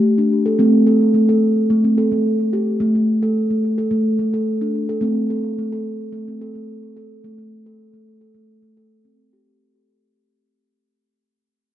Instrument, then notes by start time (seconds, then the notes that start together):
steel tongue drum
Already playing: G4
0.18 D4
0.46 A4
0.59 A3 C4
0.87 A4
1.14 A3
1.29 A4
1.70 A3
1.84 C4
1.98 A4
2.12 A3
2.53 G4
2.80 A3
2.95 A3
3.23 A4
3.50 A3
3.78 A4
3.91 A3
4.19 A3
4.34 A4
4.61 D4
4.89 A4
5.01 A3 C4
5.30 A4
5.59 A3
5.72 A4
6.13 A3
6.28 C4
6.41 A4
6.55 A3
6.97 A4
7.24 A3
7.38 A3
7.66 A4
7.94 A3
8.21 A4
8.34 A3
8.62 A3
8.77 A4
9.05 C4
9.33 G4